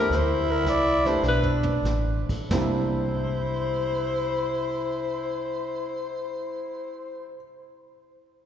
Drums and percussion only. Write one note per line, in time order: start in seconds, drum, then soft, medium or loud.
0.12 brush sweep soft
0.12 snare soft
0.66 snare medium
0.66 hi-hat pedal medium
1.05 snare soft
1.23 snare soft
1.43 floor tom medium
1.63 floor tom medium
1.85 snare medium
1.85 hi-hat pedal medium
2.29 kick medium
2.29 crash medium
2.51 snare medium
2.51 floor tom medium